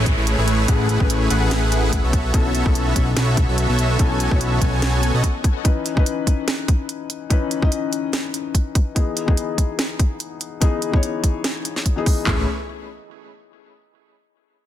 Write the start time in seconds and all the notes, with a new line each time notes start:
Already playing: A1 E3 A3 C#4 E4 G#4 B4 C#5, downlifter
0.06 kick, closed hi-hat
0.18 A1 A3 E4 G#4 B4 C#5
0.27 closed hi-hat
0.38 A1 A3 E4 G#4 B4 C#5
0.48 closed hi-hat
0.67 A1 E3 A3 C#4 E4 G#4 B4 F#5, kick, closed hi-hat
0.89 closed hi-hat
0.98 A1 E3 A3 C#4 E4 G#4 B4 C#5, kick
1.03 B4
1.10 closed hi-hat
1.30 A1 A3 E4 G#4 B4 F#5, closed hi-hat
1.51 snare, closed hi-hat
1.72 closed hi-hat
1.92 kick, closed hi-hat
2.04 B1 B3 F#4 A4 C#5 E5
2.13 kick, closed hi-hat
2.33 B1 E3 B3 C#4 F#4 A4 C#5 E5, kick, closed hi-hat
2.55 closed hi-hat
2.64 B1 E3 B3 C#4 F#4 A4 C#5 E5, kick
2.68 A4
2.75 closed hi-hat
2.96 B1 B3 F#4 A4 C#5 E5, kick, closed hi-hat
3.17 B1 B3 F#4 A4 C#5 E5, snare, closed hi-hat
3.37 kick, closed hi-hat
3.49 B1 B3 F#4 A4 C#5 E5
3.58 closed hi-hat
3.69 B1 B3 F#4 A4 C#5 E5
3.79 closed hi-hat
3.98 B1 E3 B3 C#4 F#4 A4 C#5 G#5, kick, closed hi-hat
4.20 closed hi-hat
4.29 B1 E3 B3 C#4 F#4 A4 C#5 E5, kick
4.41 closed hi-hat
4.61 B1 B3 F#4 A4 C#5 G#5, kick, closed hi-hat
4.82 snare, closed hi-hat
5.03 closed hi-hat
5.14 B1 B3 F#4 A4 C#5 D#5
5.24 kick, closed hi-hat
5.44 kick, closed hi-hat
5.64 E3 C#4 D#4 B4, kick, closed hi-hat
5.86 closed hi-hat
5.95 E3 C#4 D#4 B4, kick
6.06 closed hi-hat
6.27 kick, closed hi-hat
6.48 snare, closed hi-hat
6.68 kick, closed hi-hat
6.89 closed hi-hat
7.10 closed hi-hat
7.30 E3 C#4 D#4 B4, kick, closed hi-hat
7.51 closed hi-hat
7.61 E3 C#4 D#4 D#5, kick
7.72 closed hi-hat
7.93 closed hi-hat
8.13 snare, closed hi-hat
8.34 closed hi-hat
8.55 kick, closed hi-hat
8.75 kick, closed hi-hat
8.95 E3 B3 D#4 G#4, kick, closed hi-hat
9.17 closed hi-hat
9.26 E3 B3 D#4, kick
9.30 G#4
9.37 closed hi-hat
9.58 kick, closed hi-hat
9.79 snare, closed hi-hat
9.99 kick, closed hi-hat
10.20 closed hi-hat
10.41 closed hi-hat
10.60 E3 B3 D#4 G#4, kick, closed hi-hat
10.82 closed hi-hat
10.91 E3 B3 D#4, kick
10.95 C#5
11.03 closed hi-hat
11.24 kick, closed hi-hat
11.44 snare, closed hi-hat
11.65 closed hi-hat
11.76 snare
11.86 kick, closed hi-hat
11.96 E3 B3 D#4 G#4
12.06 kick, open hi-hat
12.24 A1 E3 A3 C#4 E4 G#4 B4 C#5, kick, clap, floor tom
12.30 G#4